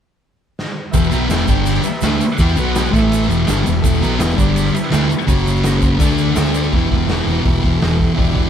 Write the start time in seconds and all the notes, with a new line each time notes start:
0.59 snare
0.91 E1 E2 B2 B4 E5 G5, kick, ride, shaker
0.96 E3
1.03 shaker
1.10 B1 B2 F#3 B3, ride, shaker
1.29 E1 E2 B2 E3 B4 E5 G5, snare, ride, shaker
1.46 G1 G2 D3 G3 G4 D5 G5, kick, ride, shaker
1.66 ride, shaker
1.82 G4 B4 E5, muted distorted electric guitar stroke, ride, shaker
2.01 D2 D3 A3 D4, snare, ride, shaker
2.20 muted distorted electric guitar stroke, muted fingered electric bass stroke, ride, shaker
2.30 shaker
2.38 E2 E3 B3 E4 G4, kick, ride, shaker
2.42 B4 G5
2.48 shaker
2.56 B1 B2 F#3 B3 F#4 B4, ride, shaker
2.61 F#5
2.75 snare, ride, shaker
2.92 A1 A2 E3 A3 E4 A4, kick, ride, shaker
2.96 E5
3.12 ride, shaker
3.28 E1 E2 B2 E3 E4 G4 B4, ride, shaker
3.46 G1 G2 D3 G3, snare, ride, shaker
3.64 E1 E2 B2, ride, shaker
3.80 E1 E2 B2 E3 E4 G4 A4, kick, ride
3.85 shaker
4.01 B1 B2 F#3 B3, ride, shaker
4.18 E1 E2 B2 E3 E4 G4 B4, snare, ride, shaker
4.31 shaker
4.36 G1 G2 D3 G3 D4 G4 D5, kick, ride, shaker
4.56 ride, shaker
4.67 shaker
4.74 E4 G4 B4, muted distorted electric guitar stroke, ride, shaker
4.90 D2 D3 A3 D4, snare, ride, shaker
5.09 muted distorted electric guitar stroke, muted fingered electric bass stroke, ride, shaker
5.20 shaker
5.27 F#1 F#2 C#3 F#3 C#4 F#4 C#5, kick, ride, shaker
5.38 shaker
5.46 ride, shaker
5.62 C#4 F#4 C5, snare, ride, shaker
5.82 B5, kick, ride, shaker
5.99 D2 D3 A3 D4 A4 D5 A5, kick, ride, shaker
6.10 shaker
6.17 F#5, ride, shaker
6.33 D2 D3 A3 D4 A4 C5 E5, snare, ride, shaker
6.54 D5, ride, shaker
6.63 shaker
6.71 E1 E2 B2 E4 G4 B4, kick, open hi-hat
6.76 E3
6.91 E1 E3, kick, open hi-hat
6.96 B2
7.05 E1 E2 E4 G4 B4, open hi-hat
7.10 B2 E3, snare
7.26 E1 B2 E3, open hi-hat
7.31 E2
7.43 E1 E2 B2 E4 G4 B4, kick, open hi-hat
7.49 E3
7.62 E1 B2 E3, kick, open hi-hat
7.66 E2
7.77 E4 G4 A4
7.81 E1 E2 B2, snare, open hi-hat
7.85 E3
7.98 E3, kick, open hi-hat
8.03 B2
8.15 E1 E2 B2 E4 G4 D5, kick, open hi-hat
8.20 E3
8.33 E1 E3, kick, open hi-hat
8.39 B2